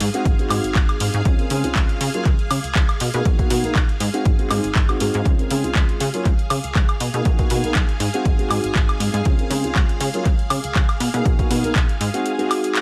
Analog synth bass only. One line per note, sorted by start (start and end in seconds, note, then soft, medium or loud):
0.01 0.09 G#2 loud
0.25 0.34 G#1 medium
0.50 0.59 G#2 medium
0.64 0.73 G#1 soft
0.76 0.84 G#1 medium
1.01 1.09 G#2 medium
1.14 1.22 G#2 medium
1.25 1.34 C#2 loud
1.51 1.64 C#3 medium
1.64 1.73 C#2 soft
1.75 1.84 C#2 loud
2.01 2.09 C#3 loud
2.26 2.34 C#2 medium
2.51 2.59 C#3 medium
2.64 2.73 C#2 soft
2.76 2.84 C#2 medium
3.01 3.09 B2 medium
3.14 3.22 B2 loud
3.26 3.34 B1 loud
3.51 3.64 B2 medium
3.64 3.73 B1 soft
3.75 3.84 B1 medium
4.00 4.09 G#2 medium
4.25 4.34 G#1 medium
4.51 4.59 G#2 medium
4.65 4.73 G#1 soft
4.76 4.84 G#1 loud
5.01 5.10 G#2 medium
5.15 5.22 G#2 loud
5.25 5.34 C#2 loud
5.51 5.64 C#3 medium
5.64 5.73 C#2 soft
5.75 5.84 C#2 loud
6.01 6.09 C#3 loud
6.25 6.34 C#2 medium
6.51 6.59 C#3 medium
6.64 6.73 C#2 soft
6.75 6.84 C#2 medium
7.00 7.09 B2 medium
7.14 7.21 B2 medium
7.26 7.34 B1 loud
7.51 7.63 B2 medium
7.64 7.73 B1 soft
7.75 7.84 B1 medium
8.00 8.09 G#2 medium
8.26 8.34 G#1 medium
8.50 8.59 G#2 medium
8.64 8.73 G#1 soft
8.75 8.84 G#1 medium
9.00 9.09 G#2 medium
9.14 9.21 G#2 medium
9.26 9.34 C#2 loud
9.50 9.64 C#3 medium
9.64 9.73 C#2 soft
9.76 9.84 C#2 medium
10.01 10.09 C#3 medium
10.26 10.34 C#2 medium
10.50 10.59 C#3 medium
10.64 10.73 C#2 soft
10.75 10.84 C#2 medium
11.00 11.09 B2 medium
11.14 11.21 B2 medium
11.26 11.34 B1 loud
11.51 11.63 B2 medium
11.64 11.73 B1 soft
11.76 11.84 B1 medium
12.01 12.09 G#2 medium